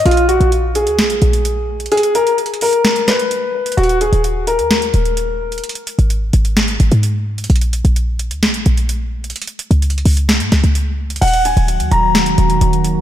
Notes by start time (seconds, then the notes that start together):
0.06 A#1 F4, closed hi-hat
0.11 closed hi-hat
0.17 closed hi-hat
0.28 F#4, closed hi-hat
0.40 A#1, closed hi-hat
0.52 closed hi-hat
0.75 G#4, closed hi-hat
0.87 D2, closed hi-hat
0.99 snare, closed hi-hat
1.04 A#1
1.10 closed hi-hat
1.22 A#1, closed hi-hat
1.33 closed hi-hat
1.45 closed hi-hat
1.80 closed hi-hat
1.86 closed hi-hat
1.92 G#4, closed hi-hat
1.97 closed hi-hat
2.03 closed hi-hat
2.15 A#4, closed hi-hat
2.27 closed hi-hat
2.38 closed hi-hat
2.46 closed hi-hat
2.54 closed hi-hat
2.61 A#4, open hi-hat
2.73 closed hi-hat
2.85 snare, closed hi-hat
2.96 closed hi-hat
3.08 B4, snare, closed hi-hat
3.19 closed hi-hat
3.31 closed hi-hat
3.66 closed hi-hat
3.72 closed hi-hat
3.77 D#1 F#4, closed hi-hat
3.83 closed hi-hat
3.89 closed hi-hat
4.01 G#4, closed hi-hat
4.13 D#1, closed hi-hat
4.24 closed hi-hat
4.47 A#4, closed hi-hat
4.59 D#2, closed hi-hat
4.71 snare, closed hi-hat
4.82 closed hi-hat
4.94 D#1, closed hi-hat
5.05 closed hi-hat
5.17 closed hi-hat
5.52 closed hi-hat
5.58 closed hi-hat
5.64 closed hi-hat
5.69 closed hi-hat
5.75 closed hi-hat
5.87 closed hi-hat
5.99 G#1, closed hi-hat
6.10 closed hi-hat
6.33 G#1, closed hi-hat
6.45 closed hi-hat
6.57 snare, closed hi-hat
6.68 closed hi-hat
6.80 G#1, closed hi-hat
6.92 G#2, closed hi-hat
7.03 closed hi-hat
7.38 closed hi-hat
7.44 closed hi-hat
7.50 A#1, closed hi-hat
7.56 closed hi-hat
7.61 closed hi-hat
7.73 closed hi-hat
7.85 A#1, closed hi-hat
7.96 closed hi-hat
8.19 closed hi-hat
8.31 D2, closed hi-hat
8.43 snare, closed hi-hat
8.49 A#1
8.54 closed hi-hat
8.66 A#1, closed hi-hat
8.77 closed hi-hat
8.89 closed hi-hat
9.24 closed hi-hat
9.30 closed hi-hat
9.36 closed hi-hat
9.42 closed hi-hat
9.47 closed hi-hat
9.59 closed hi-hat
9.71 C#2, closed hi-hat
9.82 closed hi-hat
9.90 closed hi-hat
9.98 closed hi-hat
10.05 C#2, open hi-hat
10.17 closed hi-hat
10.29 snare, closed hi-hat
10.40 G#2, closed hi-hat
10.52 C#2, snare, closed hi-hat
10.64 C#2, closed hi-hat
10.75 closed hi-hat
11.10 closed hi-hat
11.16 closed hi-hat
11.21 D#1 D#3 F#3 A#3 F#4 F#5, closed hi-hat, crash
11.28 closed hi-hat
11.34 closed hi-hat
11.45 G#5, closed hi-hat
11.57 D#1, closed hi-hat
11.68 closed hi-hat
11.80 D#2, closed hi-hat
11.91 D#1 A#5, closed hi-hat
12.15 snare, closed hi-hat
12.26 closed hi-hat
12.38 D#1, closed hi-hat
12.50 closed hi-hat
12.61 D#1, closed hi-hat
12.73 closed hi-hat
12.84 closed hi-hat